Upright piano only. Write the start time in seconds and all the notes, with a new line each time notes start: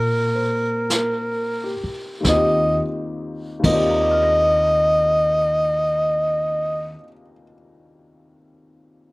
Already playing: G3 A#3 C4 D#4 F4
0.35 C5
0.94 A#4
1.64 G4
2.20 D#2 D#3
2.27 C4 F4
2.33 G4
3.59 D#2 D#3
3.65 C4 A#4
3.69 F4 G4 D5
3.81 F5
3.90 A#5
4.00 D6
4.11 F6
4.23 A#6